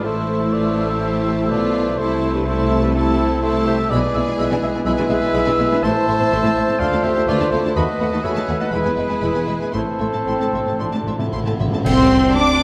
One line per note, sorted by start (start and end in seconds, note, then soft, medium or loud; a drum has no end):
0.04 1.47 A1 medium
0.04 1.47 A2 medium
0.04 1.98 A3 medium
0.04 3.73 A3 medium
0.04 1.98 A3 medium
0.04 1.98 E4 medium
0.04 0.52 E4 medium
0.04 3.73 E4 medium
0.04 0.54 A4 medium
0.04 3.60 C5 medium
0.04 0.55 C5 medium
0.04 1.95 A5 medium
0.04 1.74 E6 medium
0.53 0.89 F4 medium
0.53 0.91 B4 medium
0.53 0.91 D5 loud
0.89 1.50 G4 medium
0.89 1.52 C5 medium
0.89 1.49 E5 medium
1.50 1.99 B1 medium
1.50 1.99 B2 medium
1.50 1.98 F4 medium
1.50 2.01 B4 medium
1.50 1.99 D5 loud
1.98 3.87 C2 medium
1.98 3.87 C3 medium
1.98 2.46 A3 medium
1.98 2.45 A3 medium
1.98 2.34 E4 medium
1.98 2.45 E4 medium
1.98 2.37 A4 medium
1.98 2.34 C5 loud
1.98 2.45 A5 medium
1.98 2.45 E6 medium
2.35 2.40 D4 medium
2.35 2.48 G4 medium
2.35 2.48 B4 medium
2.46 2.93 A3 medium
2.46 2.94 A3 medium
2.46 2.93 E4 medium
2.46 2.82 E4 medium
2.46 2.83 A4 medium
2.46 2.82 C5 loud
2.46 2.94 A5 medium
2.46 2.94 E6 medium
2.82 2.95 D4 medium
2.82 2.89 G4 medium
2.82 2.94 B4 medium
2.94 3.28 A3 medium
2.94 3.42 A3 medium
2.94 3.44 C4 medium
2.94 3.42 E4 medium
2.94 3.45 E4 medium
2.94 3.42 A4 loud
2.94 3.42 A5 medium
2.94 3.43 E6 medium
3.42 3.90 A3 medium
3.42 3.90 E4 medium
3.42 3.67 E4 loud
3.42 3.67 A4 medium
3.42 3.66 C5 loud
3.42 3.90 A5 medium
3.42 3.90 E6 medium
3.66 3.91 G4 medium
3.66 3.78 C5 medium
3.66 3.92 E5 loud
3.90 3.96 B1 loud
3.90 3.96 B2 medium
3.90 5.80 G#3 medium
3.90 3.96 G#3 medium
3.90 4.02 G#3 medium
3.90 6.76 E4 medium
3.90 3.96 E4 medium
3.90 4.84 G#4 loud
3.90 5.85 B4 medium
3.90 4.58 B4 loud
3.90 4.59 D5 loud
3.90 3.96 B5 medium
3.90 3.97 E6 medium
4.15 4.20 B1 medium
4.15 4.20 B2 medium
4.15 4.19 G#3 medium
4.15 4.26 G#3 medium
4.15 4.20 B3 medium
4.15 4.20 E5 medium
4.15 4.21 E6 medium
4.27 4.32 B2 medium
4.27 4.31 G#3 medium
4.27 4.32 D4 medium
4.27 4.32 G#5 medium
4.38 4.43 B1 medium
4.38 4.43 B2 loud
4.38 4.43 G#3 loud
4.38 4.50 G#3 medium
4.38 4.43 E4 loud
4.38 4.44 B5 loud
4.38 4.44 E6 medium
4.50 4.55 B2 medium
4.50 4.55 G#3 medium
4.50 4.55 D4 medium
4.50 4.56 G#5 medium
4.62 4.67 B1 medium
4.62 4.67 B2 medium
4.62 4.67 G#3 medium
4.62 4.74 G#3 medium
4.62 4.67 B3 medium
4.62 4.68 E5 medium
4.62 4.69 E6 medium
4.74 4.79 B2 medium
4.74 4.79 G#3 medium
4.74 4.79 D4 medium
4.74 4.79 G#5 medium
4.86 4.91 B1 medium
4.86 4.91 B2 medium
4.86 4.97 G#3 medium
4.86 4.91 G#3 medium
4.86 4.91 E4 medium
4.86 5.82 G#4 medium
4.86 5.85 B4 loud
4.86 5.84 E5 loud
4.86 4.91 B5 medium
4.86 4.92 E6 medium
4.98 5.03 B2 medium
4.98 5.03 G#3 medium
4.98 5.03 D4 medium
4.98 5.03 G#5 medium
5.09 5.15 B1 medium
5.09 5.15 B2 medium
5.09 5.21 G#3 medium
5.09 5.15 G#3 medium
5.09 5.15 B3 medium
5.09 5.14 E5 medium
5.09 5.15 E6 medium
5.22 5.27 B2 medium
5.22 5.27 G#3 medium
5.22 5.27 D4 medium
5.22 5.27 G#5 medium
5.34 5.39 B1 medium
5.34 5.39 B2 loud
5.34 5.45 G#3 medium
5.34 5.39 G#3 medium
5.34 5.39 E4 medium
5.34 5.39 B5 medium
5.34 5.40 E6 medium
5.46 5.51 B2 medium
5.46 5.51 G#3 medium
5.46 5.51 D4 medium
5.46 5.51 G#5 medium
5.58 5.64 B1 medium
5.58 5.64 B2 medium
5.58 5.64 G#3 medium
5.58 5.70 G#3 medium
5.58 5.64 B3 medium
5.58 5.64 E5 medium
5.58 5.64 E6 medium
5.71 5.76 B2 medium
5.71 5.76 G#3 medium
5.71 5.76 D4 medium
5.71 5.77 G#5 medium
5.82 5.89 A1 loud
5.82 5.88 A2 loud
5.82 8.68 A3 medium
5.82 5.89 A3 medium
5.82 5.95 A3 medium
5.82 5.89 E4 medium
5.82 6.78 C5 loud
5.82 7.78 C5 medium
5.82 6.81 E5 loud
5.82 6.81 A5 loud
5.82 5.89 C6 medium
5.82 5.90 C6 medium
6.07 6.13 A1 medium
6.07 6.12 A2 medium
6.07 6.13 A3 medium
6.07 6.20 A3 medium
6.07 6.13 E5 medium
6.07 6.15 C6 medium
6.19 6.24 A2 medium
6.19 6.25 A3 medium
6.19 6.25 C4 medium
6.19 6.25 A5 medium
6.31 6.37 A1 medium
6.31 6.36 A2 loud
6.31 6.37 A3 medium
6.31 6.43 A3 medium
6.31 6.37 E4 medium
6.31 6.37 C6 medium
6.31 6.39 C6 medium
6.43 6.48 A2 medium
6.43 6.49 A3 medium
6.43 6.49 C4 medium
6.43 6.49 A5 medium
6.56 6.61 A1 medium
6.56 6.61 A2 medium
6.56 6.62 A3 medium
6.56 6.67 A3 medium
6.56 6.61 E5 medium
6.56 6.63 C6 medium
6.68 6.73 A2 medium
6.68 6.73 A3 medium
6.68 6.73 C4 medium
6.68 6.73 A5 medium
6.79 6.85 D2 medium
6.79 6.85 A3 medium
6.79 6.91 A3 medium
6.79 7.76 F4 medium
6.79 6.85 F4 medium
6.79 7.04 A4 medium
6.79 7.06 D5 medium
6.79 7.04 F5 loud
6.79 6.85 C6 medium
6.79 6.87 C6 medium
6.92 6.97 D2 medium
6.92 6.97 A3 medium
6.92 6.97 D4 medium
6.92 6.97 A5 medium
7.03 7.09 D2 medium
7.03 7.14 A3 medium
7.03 7.10 A3 medium
7.03 7.10 C4 medium
7.03 7.28 G4 medium
7.03 7.29 C5 loud
7.03 7.28 E5 loud
7.03 7.09 F5 medium
7.03 7.10 C6 medium
7.16 7.21 D2 medium
7.16 7.21 A3 medium
7.16 7.21 D4 medium
7.16 7.21 A5 medium
7.27 7.32 D2 medium
7.27 7.33 D2 medium
7.27 7.39 A3 medium
7.27 7.34 A3 loud
7.27 7.52 F4 loud
7.27 7.34 F4 loud
7.27 7.53 B4 medium
7.27 7.51 D5 loud
7.27 7.33 C6 medium
7.27 7.35 C6 medium
7.40 7.45 D2 medium
7.40 7.46 A3 medium
7.40 7.46 D4 medium
7.40 7.45 A5 medium
7.51 7.57 D2 medium
7.51 7.63 A3 medium
7.51 7.58 A3 medium
7.51 7.58 C4 medium
7.51 7.76 E4 medium
7.51 7.75 A4 medium
7.51 7.75 C5 loud
7.51 7.58 F5 medium
7.51 7.60 C6 medium
7.64 7.69 D2 medium
7.64 7.70 A3 medium
7.64 7.70 D4 medium
7.64 7.70 A5 medium
7.75 7.81 D#2 medium
7.75 7.87 A3 medium
7.75 7.82 A3 medium
7.75 8.70 F#4 medium
7.75 8.25 F#4 medium
7.75 7.82 F#4 medium
7.75 8.25 B4 medium
7.75 9.76 B4 medium
7.75 8.25 D#5 loud
7.75 7.81 B5 medium
7.75 7.83 B5 medium
8.00 8.05 D#2 medium
8.00 8.06 A3 medium
8.00 8.12 A3 medium
8.00 8.06 B3 medium
8.00 8.06 F#5 medium
8.00 8.06 B5 medium
8.12 8.17 D#2 medium
8.12 8.18 A3 medium
8.12 8.18 D#4 medium
8.12 8.17 A5 medium
8.24 8.29 D#2 medium
8.24 8.36 A3 medium
8.24 8.30 A3 medium
8.24 8.30 F#4 medium
8.24 8.61 G#4 medium
8.24 8.60 C#5 medium
8.24 8.62 E5 loud
8.24 8.29 B5 medium
8.24 8.31 B5 medium
8.36 8.41 D#2 medium
8.36 8.42 A3 medium
8.36 8.42 D#4 medium
8.36 8.41 A5 medium
8.47 8.53 D#2 medium
8.47 8.54 A3 medium
8.47 8.60 A3 medium
8.47 8.54 B3 medium
8.47 8.52 F#5 medium
8.47 8.54 B5 medium
8.59 8.65 D#2 medium
8.59 8.66 A3 medium
8.59 8.66 D#4 medium
8.59 8.73 A4 medium
8.59 8.72 D#5 medium
8.59 8.74 F#5 medium
8.59 8.64 A5 medium
8.72 8.77 E1 medium
8.72 8.77 E2 medium
8.72 9.74 G#3 medium
8.72 8.84 G#3 medium
8.72 8.78 G#3 medium
8.72 11.60 E4 medium
8.72 9.75 E4 medium
8.72 8.78 E4 medium
8.72 9.75 G#4 medium
8.72 9.74 B4 loud
8.72 8.77 B5 medium
8.72 8.79 B5 medium
8.83 8.89 E2 medium
8.83 8.90 G#3 medium
8.83 8.90 B3 medium
8.83 8.88 G#5 medium
8.95 9.02 E1 medium
8.95 9.02 E2 medium
8.95 9.02 G#3 medium
8.95 9.09 G#3 medium
8.95 9.01 E5 medium
8.95 9.03 B5 medium
9.08 9.14 E2 medium
9.08 9.14 G#3 medium
9.08 9.14 B3 medium
9.08 9.13 G#5 medium
9.21 9.27 E1 medium
9.21 9.27 E2 medium
9.21 9.34 G#3 medium
9.21 9.28 G#3 medium
9.21 9.28 E4 medium
9.21 9.26 B5 medium
9.21 9.28 B5 medium
9.34 9.40 E2 medium
9.34 9.40 G#3 medium
9.34 9.40 B3 medium
9.34 9.39 G#5 medium
9.46 9.53 E1 medium
9.46 9.53 E2 soft
9.46 9.60 G#3 medium
9.46 9.53 G#3 medium
9.46 9.52 E5 medium
9.46 9.54 B5 medium
9.59 9.66 E2 medium
9.59 9.67 G#3 medium
9.59 9.67 B3 medium
9.59 9.65 G#5 medium
9.72 9.80 A1 medium
9.72 9.79 A2 medium
9.72 9.81 A2 soft
9.72 9.86 A3 medium
9.72 11.56 A3 medium
9.72 9.80 A3 medium
9.72 11.33 C4 medium
9.72 11.33 E4 medium
9.72 9.80 E4 medium
9.72 11.30 A4 loud
9.72 11.60 C5 medium
9.72 9.78 C6 medium
9.72 9.80 C6 medium
9.82 9.89 A2 soft
9.90 9.97 A2 soft
9.98 10.06 A1 medium
9.98 10.05 A2 soft
9.98 10.06 A2 medium
9.98 10.06 A3 medium
9.98 10.13 A3 medium
9.98 10.05 E5 medium
9.98 10.07 C6 medium
10.06 10.14 A2 soft
10.13 10.19 A2 medium
10.13 10.22 A2 soft
10.13 10.19 A3 medium
10.13 10.19 C4 soft
10.13 10.19 A5 soft
10.23 10.30 A2 soft
10.23 10.76 C4 medium
10.27 10.33 A1 medium
10.27 10.32 A2 medium
10.27 10.32 A3 medium
10.27 10.33 E4 medium
10.27 10.32 C6 medium
10.27 10.34 C6 medium
10.31 10.38 A2 medium
10.39 10.46 A2 medium
10.39 10.45 A2 medium
10.39 10.46 A3 soft
10.39 10.46 C4 medium
10.39 10.46 A5 medium
10.47 10.54 A2 medium
10.53 10.59 A1 medium
10.53 10.58 A2 medium
10.53 10.62 A2 medium
10.53 10.59 A3 soft
10.53 10.59 E5 soft
10.53 10.60 C6 medium
10.63 10.70 A2 medium
10.63 10.72 A2 medium
10.63 10.72 A3 medium
10.63 10.72 A5 soft
10.67 10.72 C4 medium
10.72 10.78 A2 medium
10.79 10.85 A1 medium
10.79 10.86 A2 medium
10.79 10.85 A2 medium
10.79 10.85 A3 medium
10.79 11.18 D4 medium
10.79 10.85 E4 medium
10.79 10.85 C6 medium
10.79 10.87 C6 medium
10.87 10.94 A2 medium
10.93 10.98 A2 medium
10.93 11.02 A2 medium
10.93 10.99 A3 medium
10.93 10.98 C4 soft
10.93 10.98 A5 medium
11.03 11.12 A1 medium
11.03 11.10 A2 medium
11.03 11.11 A2 medium
11.03 11.12 A3 medium
11.03 11.12 E5 medium
11.07 11.13 C6 medium
11.12 11.18 A2 medium
11.19 11.26 A2 medium
11.19 11.25 A2 medium
11.19 11.25 A3 medium
11.19 11.25 C4 medium
11.19 11.84 E4 medium
11.19 11.25 A5 medium
11.27 11.34 A2 medium
11.32 11.38 A1 medium
11.32 11.38 A2 medium
11.32 11.42 A2 medium
11.32 11.38 A3 medium
11.32 11.38 E4 medium
11.32 11.38 C6 medium
11.32 11.39 C6 medium
11.44 11.51 A2 medium
11.44 11.52 A3 medium
11.44 11.52 C4 medium
11.44 11.51 A5 medium
11.52 11.59 A2 medium
11.59 11.65 A1 medium
11.59 11.65 A2 medium
11.59 11.67 A2 loud
11.59 11.65 A3 medium
11.59 11.64 E5 medium
11.59 11.65 C6 medium
11.68 11.75 A2 loud
11.72 11.78 A2 medium
11.72 11.83 A2 medium
11.72 11.78 A3 medium
11.72 11.78 C4 medium
11.72 11.77 A5 medium
11.85 12.31 C2 loud
11.85 12.55 A2 loud
11.85 12.31 C4 loud
11.85 12.37 C5 loud
11.85 12.31 C5 loud
11.85 12.31 E5 loud
11.85 12.31 C6 medium
11.85 12.31 C6 loud
11.85 concert bass drum medium
11.85 crash medium
12.33 12.63 D2 medium
12.33 12.63 D4 medium
12.33 12.63 D4 loud
12.33 12.63 D5 medium
12.33 12.63 D5 loud
12.33 12.63 D6 loud